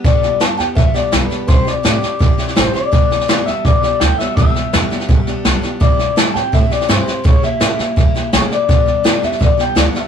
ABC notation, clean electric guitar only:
X:1
M:4/4
L:1/8
Q:1/4=167
K:G
V:1 name="Clean electric guitar"
d2 a g e d B2 | c d4- d c d- | d3 e d d g e | e6 z2 |
d2 a g e d c2 | ^c e4- e c d- | d3 e d g d e |]